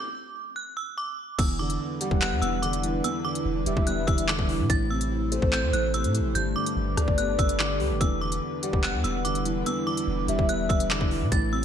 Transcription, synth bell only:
Already playing: D6
0.56 F#6
0.77 E6
0.98 D6
1.38 E6
1.59 D6
2.21 F#6
2.42 E6
2.62 D6
3.04 E6
3.25 D6
3.87 F#6
4.07 E6
4.28 D6
4.70 A6
4.91 E6
5.53 G6
5.73 F#6
5.94 E6
6.35 G6
6.56 D6
7.18 F#6
7.39 E6
7.60 D6
8.01 E6
8.21 D6
8.83 F#6
9.04 E6
9.25 D6
9.66 E6
9.87 D6
10.49 F#6
10.69 E6
10.90 D6
11.32 A6
11.53 E6

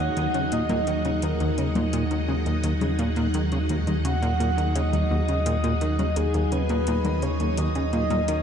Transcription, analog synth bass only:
0.17 D#2
0.35 C#3
0.52 A#2
0.70 A#2
0.87 D#3
1.05 C#3
1.23 D#2
1.40 D#2
1.58 C#3
1.76 A#2
1.93 A#2
2.11 D#3
2.28 C#3
2.46 D#2
2.64 D#2
2.81 C#3
2.99 A#2
3.17 A#2
3.35 D#3
3.52 C#3
3.70 D#2
3.87 D#2
4.05 C#3
4.22 A#2
4.40 A#2
4.57 D#3
4.76 C#3
4.93 D#2
5.11 D#2
5.29 C#3
5.46 A#2
5.64 A#2
5.81 D#3
5.99 C#3
6.17 D#2
6.34 D#2
6.52 C#3
6.70 A#2
6.88 A#2
7.05 D#3
7.23 C#3
7.40 D#2
7.58 D#2
7.75 C#3
7.93 A#2
8.10 A#2
8.28 D#3

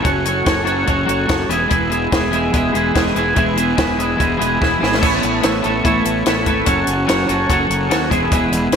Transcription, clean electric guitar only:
0.02 F#3 C#4 F#4 A4 C#5
0.24 F#3 C#4 F#4 A4 C#5
0.44 F#3 C#4 F#4 A4 C#5
0.63 F#3 C#4 F#4 A4 C#5
0.85 F#3 C#4 F#4 A4 C#5
1.05 F#3 C#4 F#4 A4 C#5
1.27 F#3 C#4 F#4 A4 C#5
1.49 E3 G#3 B3 E4 G#4
1.68 E3 G#3 B3 E4 G#4
1.90 E3 G#3 B3 E4 G#4
2.11 E3 G#3 B3 E4 G#4
2.30 E3 G#3 B3 E4 G#4
2.53 E3 G#3 B3 E4 G#4
2.72 E3 G#3 B3 E4 G#4
2.93 E3 G#3 B3 E4 G#4
3.14 E3 G#3 B3 E4 G#4
3.34 E3 G#3 B3 E4 G#4
3.55 E3 G#3 B3 E4 G#4
3.75 E3 G#3 B3 E4 G#4
3.97 E3 G#3 B3 E4 G#4
4.16 E3 G#3 B3 E4 G#4
4.37 E3 G#3 B3 E4 G#4
4.60 E3 G#3 B3 E4 G#4
4.79 E3 G#3 B3 E4 G#4
4.99 A3 B3 E4 A4 C#5
5.41 A3 B3 E4 A4 C#5
5.62 A3 B3 E4 A4 C#5
5.84 A3 B3 E4 A4 C#5
6.26 A3 B3 E4 A4 C#5
6.45 A3 B3 E4 A4 C#5
6.65 F#3 C#4 F#4 A4 C#5
7.06 F#3 C#4 F#4 A4 C#5
7.27 F#3 C#4 F#4 A4 C#5
7.49 F#3 C#4 F#4 A4 C#5
7.89 F#3 C#4 F#4 A4 C#5
8.09 E3 G#3 B3 E4 G#4
8.30 E3 G#3 B3 E4 G#4
8.72 E3 G#3

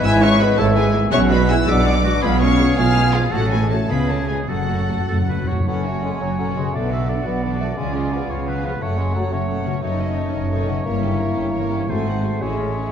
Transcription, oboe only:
Already playing: B4
0.58 E5
1.11 F#5
1.68 E5
1.87 D5
2.05 F#4
2.22 G#4
3.32 A4
3.89 G#4
4.48 A4
5.08 A4
5.29 B4
5.47 C#5
5.68 C#5
6.76 D5
6.92 E5
7.09 D5
8.31 C#5
8.48 B4
8.66 B4
8.82 C#5
9.33 C#5
9.83 C#5
11.89 C5
12.41 C#5

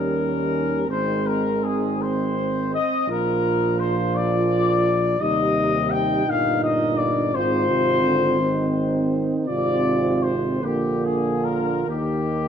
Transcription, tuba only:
Already playing: D#2
0.89 G#1
3.07 A#1
5.20 D#2
6.26 G1
7.34 G#1
9.50 G#1
10.63 A#1
11.88 D#2

